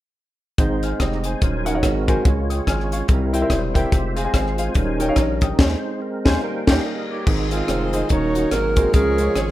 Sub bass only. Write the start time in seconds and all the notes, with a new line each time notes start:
0.58 G#1
1.00 F1
1.42 D#1
1.83 G#1
2.25 C#2
2.67 G#1
3.09 C2
3.50 E1
3.92 F1
4.33 G#1
4.75 D#1
5.16 A#1
5.59 D#2
6.26 D#2
6.67 D#2
7.27 G#1
7.68 F1
8.10 D#1
8.51 G#1
8.94 C#2
9.35 G#1